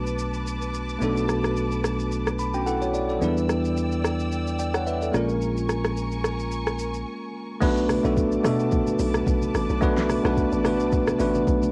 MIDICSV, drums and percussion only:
0, 0, Header, 1, 2, 480
1, 0, Start_track
1, 0, Key_signature, 2, "minor"
1, 0, Tempo, 550459
1, 883, Time_signature, 4, 2, 24, 8
1, 10217, End_track
2, 0, Start_track
2, 0, Title_t, "Drums"
2, 57, Note_on_c, 9, 82, 59
2, 144, Note_off_c, 9, 82, 0
2, 162, Note_on_c, 9, 82, 93
2, 249, Note_off_c, 9, 82, 0
2, 293, Note_on_c, 9, 82, 53
2, 381, Note_off_c, 9, 82, 0
2, 408, Note_on_c, 9, 82, 78
2, 495, Note_off_c, 9, 82, 0
2, 538, Note_on_c, 9, 82, 58
2, 625, Note_off_c, 9, 82, 0
2, 646, Note_on_c, 9, 82, 72
2, 733, Note_off_c, 9, 82, 0
2, 775, Note_on_c, 9, 82, 41
2, 863, Note_off_c, 9, 82, 0
2, 884, Note_on_c, 9, 82, 58
2, 971, Note_off_c, 9, 82, 0
2, 1021, Note_on_c, 9, 82, 54
2, 1108, Note_off_c, 9, 82, 0
2, 1125, Note_on_c, 9, 37, 89
2, 1125, Note_on_c, 9, 82, 81
2, 1212, Note_off_c, 9, 37, 0
2, 1212, Note_off_c, 9, 82, 0
2, 1258, Note_on_c, 9, 82, 47
2, 1259, Note_on_c, 9, 37, 92
2, 1345, Note_off_c, 9, 82, 0
2, 1346, Note_off_c, 9, 37, 0
2, 1367, Note_on_c, 9, 82, 68
2, 1454, Note_off_c, 9, 82, 0
2, 1496, Note_on_c, 9, 82, 52
2, 1583, Note_off_c, 9, 82, 0
2, 1606, Note_on_c, 9, 37, 95
2, 1608, Note_on_c, 9, 82, 96
2, 1693, Note_off_c, 9, 37, 0
2, 1696, Note_off_c, 9, 82, 0
2, 1738, Note_on_c, 9, 82, 52
2, 1825, Note_off_c, 9, 82, 0
2, 1846, Note_on_c, 9, 82, 69
2, 1933, Note_off_c, 9, 82, 0
2, 1979, Note_on_c, 9, 37, 91
2, 1979, Note_on_c, 9, 82, 61
2, 2066, Note_off_c, 9, 37, 0
2, 2066, Note_off_c, 9, 82, 0
2, 2083, Note_on_c, 9, 82, 90
2, 2171, Note_off_c, 9, 82, 0
2, 2214, Note_on_c, 9, 82, 55
2, 2301, Note_off_c, 9, 82, 0
2, 2328, Note_on_c, 9, 82, 76
2, 2415, Note_off_c, 9, 82, 0
2, 2459, Note_on_c, 9, 82, 54
2, 2546, Note_off_c, 9, 82, 0
2, 2566, Note_on_c, 9, 82, 72
2, 2653, Note_off_c, 9, 82, 0
2, 2696, Note_on_c, 9, 82, 39
2, 2783, Note_off_c, 9, 82, 0
2, 2805, Note_on_c, 9, 82, 59
2, 2893, Note_off_c, 9, 82, 0
2, 2941, Note_on_c, 9, 82, 55
2, 3028, Note_off_c, 9, 82, 0
2, 3045, Note_on_c, 9, 37, 91
2, 3045, Note_on_c, 9, 82, 82
2, 3132, Note_off_c, 9, 37, 0
2, 3132, Note_off_c, 9, 82, 0
2, 3178, Note_on_c, 9, 82, 50
2, 3265, Note_off_c, 9, 82, 0
2, 3286, Note_on_c, 9, 82, 70
2, 3374, Note_off_c, 9, 82, 0
2, 3416, Note_on_c, 9, 82, 51
2, 3503, Note_off_c, 9, 82, 0
2, 3525, Note_on_c, 9, 37, 98
2, 3528, Note_on_c, 9, 82, 92
2, 3613, Note_off_c, 9, 37, 0
2, 3615, Note_off_c, 9, 82, 0
2, 3658, Note_on_c, 9, 82, 51
2, 3745, Note_off_c, 9, 82, 0
2, 3765, Note_on_c, 9, 82, 69
2, 3853, Note_off_c, 9, 82, 0
2, 3899, Note_on_c, 9, 82, 60
2, 3986, Note_off_c, 9, 82, 0
2, 4002, Note_on_c, 9, 82, 91
2, 4090, Note_off_c, 9, 82, 0
2, 4133, Note_on_c, 9, 82, 55
2, 4135, Note_on_c, 9, 37, 94
2, 4220, Note_off_c, 9, 82, 0
2, 4222, Note_off_c, 9, 37, 0
2, 4248, Note_on_c, 9, 82, 78
2, 4335, Note_off_c, 9, 82, 0
2, 4377, Note_on_c, 9, 82, 57
2, 4465, Note_off_c, 9, 82, 0
2, 4485, Note_on_c, 9, 82, 70
2, 4486, Note_on_c, 9, 37, 87
2, 4572, Note_off_c, 9, 82, 0
2, 4573, Note_off_c, 9, 37, 0
2, 4615, Note_on_c, 9, 82, 41
2, 4702, Note_off_c, 9, 82, 0
2, 4724, Note_on_c, 9, 82, 59
2, 4812, Note_off_c, 9, 82, 0
2, 4860, Note_on_c, 9, 82, 57
2, 4948, Note_off_c, 9, 82, 0
2, 4964, Note_on_c, 9, 37, 92
2, 4964, Note_on_c, 9, 82, 84
2, 5051, Note_off_c, 9, 37, 0
2, 5051, Note_off_c, 9, 82, 0
2, 5097, Note_on_c, 9, 82, 48
2, 5098, Note_on_c, 9, 37, 95
2, 5184, Note_off_c, 9, 82, 0
2, 5185, Note_off_c, 9, 37, 0
2, 5205, Note_on_c, 9, 82, 71
2, 5292, Note_off_c, 9, 82, 0
2, 5334, Note_on_c, 9, 82, 51
2, 5422, Note_off_c, 9, 82, 0
2, 5444, Note_on_c, 9, 37, 98
2, 5447, Note_on_c, 9, 82, 91
2, 5531, Note_off_c, 9, 37, 0
2, 5534, Note_off_c, 9, 82, 0
2, 5576, Note_on_c, 9, 82, 52
2, 5664, Note_off_c, 9, 82, 0
2, 5683, Note_on_c, 9, 82, 73
2, 5770, Note_off_c, 9, 82, 0
2, 5816, Note_on_c, 9, 82, 59
2, 5817, Note_on_c, 9, 37, 95
2, 5904, Note_off_c, 9, 37, 0
2, 5904, Note_off_c, 9, 82, 0
2, 5921, Note_on_c, 9, 82, 96
2, 6009, Note_off_c, 9, 82, 0
2, 6051, Note_on_c, 9, 82, 56
2, 6139, Note_off_c, 9, 82, 0
2, 6642, Note_on_c, 9, 49, 94
2, 6642, Note_on_c, 9, 82, 62
2, 6643, Note_on_c, 9, 36, 111
2, 6729, Note_off_c, 9, 49, 0
2, 6729, Note_off_c, 9, 82, 0
2, 6730, Note_off_c, 9, 36, 0
2, 6777, Note_on_c, 9, 82, 59
2, 6865, Note_off_c, 9, 82, 0
2, 6881, Note_on_c, 9, 37, 95
2, 6881, Note_on_c, 9, 46, 50
2, 6881, Note_on_c, 9, 82, 87
2, 6884, Note_on_c, 9, 63, 75
2, 6968, Note_off_c, 9, 37, 0
2, 6968, Note_off_c, 9, 46, 0
2, 6968, Note_off_c, 9, 82, 0
2, 6971, Note_off_c, 9, 63, 0
2, 7015, Note_on_c, 9, 63, 77
2, 7015, Note_on_c, 9, 82, 48
2, 7102, Note_off_c, 9, 63, 0
2, 7102, Note_off_c, 9, 82, 0
2, 7121, Note_on_c, 9, 36, 84
2, 7123, Note_on_c, 9, 82, 75
2, 7124, Note_on_c, 9, 64, 65
2, 7208, Note_off_c, 9, 36, 0
2, 7211, Note_off_c, 9, 64, 0
2, 7211, Note_off_c, 9, 82, 0
2, 7253, Note_on_c, 9, 82, 53
2, 7340, Note_off_c, 9, 82, 0
2, 7362, Note_on_c, 9, 37, 96
2, 7364, Note_on_c, 9, 63, 78
2, 7365, Note_on_c, 9, 46, 60
2, 7365, Note_on_c, 9, 82, 98
2, 7450, Note_off_c, 9, 37, 0
2, 7451, Note_off_c, 9, 63, 0
2, 7453, Note_off_c, 9, 46, 0
2, 7453, Note_off_c, 9, 82, 0
2, 7495, Note_on_c, 9, 82, 55
2, 7582, Note_off_c, 9, 82, 0
2, 7601, Note_on_c, 9, 82, 74
2, 7604, Note_on_c, 9, 36, 116
2, 7604, Note_on_c, 9, 64, 80
2, 7688, Note_off_c, 9, 82, 0
2, 7691, Note_off_c, 9, 36, 0
2, 7692, Note_off_c, 9, 64, 0
2, 7735, Note_on_c, 9, 82, 65
2, 7739, Note_on_c, 9, 63, 69
2, 7822, Note_off_c, 9, 82, 0
2, 7826, Note_off_c, 9, 63, 0
2, 7840, Note_on_c, 9, 46, 61
2, 7840, Note_on_c, 9, 82, 101
2, 7927, Note_off_c, 9, 46, 0
2, 7927, Note_off_c, 9, 82, 0
2, 7971, Note_on_c, 9, 82, 58
2, 7973, Note_on_c, 9, 37, 94
2, 7977, Note_on_c, 9, 63, 81
2, 8058, Note_off_c, 9, 82, 0
2, 8060, Note_off_c, 9, 37, 0
2, 8064, Note_off_c, 9, 63, 0
2, 8082, Note_on_c, 9, 36, 100
2, 8086, Note_on_c, 9, 82, 82
2, 8170, Note_off_c, 9, 36, 0
2, 8173, Note_off_c, 9, 82, 0
2, 8214, Note_on_c, 9, 63, 76
2, 8216, Note_on_c, 9, 82, 60
2, 8301, Note_off_c, 9, 63, 0
2, 8303, Note_off_c, 9, 82, 0
2, 8324, Note_on_c, 9, 46, 42
2, 8324, Note_on_c, 9, 82, 74
2, 8326, Note_on_c, 9, 37, 92
2, 8412, Note_off_c, 9, 46, 0
2, 8412, Note_off_c, 9, 82, 0
2, 8413, Note_off_c, 9, 37, 0
2, 8454, Note_on_c, 9, 82, 45
2, 8541, Note_off_c, 9, 82, 0
2, 8563, Note_on_c, 9, 36, 112
2, 8563, Note_on_c, 9, 82, 61
2, 8650, Note_off_c, 9, 82, 0
2, 8651, Note_off_c, 9, 36, 0
2, 8697, Note_on_c, 9, 38, 66
2, 8698, Note_on_c, 9, 82, 57
2, 8784, Note_off_c, 9, 38, 0
2, 8785, Note_off_c, 9, 82, 0
2, 8803, Note_on_c, 9, 37, 92
2, 8803, Note_on_c, 9, 46, 53
2, 8803, Note_on_c, 9, 82, 84
2, 8805, Note_on_c, 9, 63, 80
2, 8890, Note_off_c, 9, 37, 0
2, 8890, Note_off_c, 9, 46, 0
2, 8890, Note_off_c, 9, 82, 0
2, 8892, Note_off_c, 9, 63, 0
2, 8935, Note_on_c, 9, 63, 76
2, 8936, Note_on_c, 9, 82, 48
2, 8937, Note_on_c, 9, 37, 101
2, 9023, Note_off_c, 9, 63, 0
2, 9023, Note_off_c, 9, 82, 0
2, 9024, Note_off_c, 9, 37, 0
2, 9042, Note_on_c, 9, 36, 88
2, 9044, Note_on_c, 9, 64, 65
2, 9044, Note_on_c, 9, 82, 75
2, 9129, Note_off_c, 9, 36, 0
2, 9132, Note_off_c, 9, 64, 0
2, 9132, Note_off_c, 9, 82, 0
2, 9174, Note_on_c, 9, 82, 52
2, 9261, Note_off_c, 9, 82, 0
2, 9283, Note_on_c, 9, 37, 100
2, 9285, Note_on_c, 9, 63, 77
2, 9286, Note_on_c, 9, 46, 58
2, 9286, Note_on_c, 9, 82, 97
2, 9370, Note_off_c, 9, 37, 0
2, 9373, Note_off_c, 9, 46, 0
2, 9373, Note_off_c, 9, 63, 0
2, 9373, Note_off_c, 9, 82, 0
2, 9416, Note_on_c, 9, 82, 56
2, 9503, Note_off_c, 9, 82, 0
2, 9524, Note_on_c, 9, 82, 72
2, 9525, Note_on_c, 9, 64, 76
2, 9526, Note_on_c, 9, 36, 119
2, 9611, Note_off_c, 9, 82, 0
2, 9612, Note_off_c, 9, 64, 0
2, 9613, Note_off_c, 9, 36, 0
2, 9656, Note_on_c, 9, 82, 63
2, 9657, Note_on_c, 9, 37, 101
2, 9659, Note_on_c, 9, 63, 70
2, 9743, Note_off_c, 9, 82, 0
2, 9744, Note_off_c, 9, 37, 0
2, 9746, Note_off_c, 9, 63, 0
2, 9762, Note_on_c, 9, 46, 58
2, 9762, Note_on_c, 9, 82, 96
2, 9850, Note_off_c, 9, 46, 0
2, 9850, Note_off_c, 9, 82, 0
2, 9892, Note_on_c, 9, 82, 55
2, 9898, Note_on_c, 9, 63, 81
2, 9980, Note_off_c, 9, 82, 0
2, 9986, Note_off_c, 9, 63, 0
2, 10003, Note_on_c, 9, 36, 98
2, 10006, Note_on_c, 9, 82, 80
2, 10090, Note_off_c, 9, 36, 0
2, 10094, Note_off_c, 9, 82, 0
2, 10134, Note_on_c, 9, 63, 78
2, 10137, Note_on_c, 9, 82, 60
2, 10217, Note_off_c, 9, 63, 0
2, 10217, Note_off_c, 9, 82, 0
2, 10217, End_track
0, 0, End_of_file